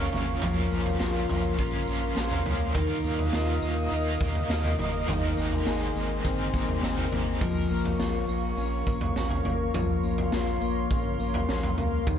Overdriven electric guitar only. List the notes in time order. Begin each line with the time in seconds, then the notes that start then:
Already playing: F3 C#4 F4 A#4
0.41 A#2 F3 C#4 F4
0.46 A#4
1.58 F3 C#4 F4 A#4
2.16 F3 C#4 F4 A#4
2.74 D#3 A#3 F4
2.79 A#4
3.91 D#3 A#3 F4 A#4
4.49 D#3 A#3 F4 A#4
5.07 G#3 C4 D#4
5.11 A#4
6.24 G#3 C4 D#4 A#4
6.82 G#3 C4 D#4 A#4